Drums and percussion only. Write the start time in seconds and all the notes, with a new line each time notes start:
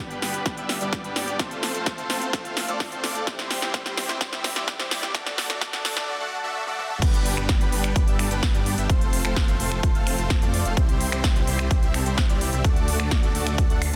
0.11 closed hi-hat
0.22 snare, open hi-hat
0.34 closed hi-hat
0.46 kick, snare, closed hi-hat
0.57 closed hi-hat
0.69 snare, open hi-hat
0.81 closed hi-hat
0.93 kick, snare, closed hi-hat
1.04 closed hi-hat
1.16 snare, open hi-hat
1.28 closed hi-hat
1.39 kick, snare, closed hi-hat
1.51 closed hi-hat
1.63 snare, open hi-hat
1.75 closed hi-hat
1.86 kick, snare, closed hi-hat
1.98 closed hi-hat
2.10 snare, open hi-hat
2.22 closed hi-hat
2.33 kick, snare, closed hi-hat
2.45 closed hi-hat
2.57 snare, open hi-hat
2.68 closed hi-hat
2.80 kick, snare, open hi-hat
2.92 closed hi-hat
3.04 snare, open hi-hat
3.15 closed hi-hat
3.27 kick, snare, closed hi-hat
3.39 snare, closed hi-hat
3.51 snare, open hi-hat
3.62 snare, closed hi-hat
3.74 kick, snare, closed hi-hat
3.86 snare, closed hi-hat
3.97 snare, open hi-hat
4.09 snare, closed hi-hat
4.21 kick, snare, closed hi-hat
4.33 snare, closed hi-hat
4.44 snare, open hi-hat
4.56 snare, closed hi-hat
4.68 kick, snare, closed hi-hat
4.80 snare, closed hi-hat
4.91 snare, open hi-hat
5.03 snare, closed hi-hat
5.15 kick, snare, closed hi-hat
5.26 snare, closed hi-hat
5.38 snare, open hi-hat
5.50 snare, closed hi-hat
5.61 kick, snare, closed hi-hat
5.73 snare, closed hi-hat
5.85 snare, open hi-hat
5.97 snare, closed hi-hat
6.67 high tom
6.79 mid tom
6.90 mid tom
7.02 kick, closed hi-hat, crash
7.14 closed hi-hat
7.26 open hi-hat
7.37 finger snap, closed hi-hat
7.49 kick, snare, closed hi-hat
7.61 closed hi-hat
7.72 open hi-hat
7.84 finger snap, closed hi-hat
7.96 kick, closed hi-hat
8.08 closed hi-hat
8.19 finger snap, open hi-hat
8.31 closed hi-hat
8.43 kick, snare, closed hi-hat
8.55 closed hi-hat
8.66 open hi-hat
8.78 closed hi-hat
8.90 kick, closed hi-hat
9.01 closed hi-hat
9.13 open hi-hat
9.25 finger snap, closed hi-hat
9.36 kick, snare, closed hi-hat
9.48 closed hi-hat
9.60 open hi-hat
9.72 finger snap, closed hi-hat
9.83 kick, closed hi-hat
9.95 closed hi-hat
10.07 finger snap, open hi-hat
10.18 closed hi-hat
10.30 kick, snare, closed hi-hat
10.42 closed hi-hat
10.54 open hi-hat
10.65 closed hi-hat
10.77 kick, closed hi-hat
10.89 closed hi-hat
11.01 open hi-hat
11.12 finger snap, closed hi-hat
11.24 kick, snare, closed hi-hat
11.36 closed hi-hat
11.47 open hi-hat
11.59 finger snap, closed hi-hat
11.71 kick, closed hi-hat
11.83 closed hi-hat
11.94 finger snap, open hi-hat
12.06 closed hi-hat
12.18 kick, snare, closed hi-hat
12.29 closed hi-hat
12.41 open hi-hat
12.53 closed hi-hat
12.64 kick, closed hi-hat
12.76 closed hi-hat
12.88 open hi-hat
13.00 finger snap
13.11 kick, snare, closed hi-hat
13.23 closed hi-hat
13.35 open hi-hat
13.47 finger snap, closed hi-hat
13.58 kick, closed hi-hat
13.70 closed hi-hat
13.82 finger snap, open hi-hat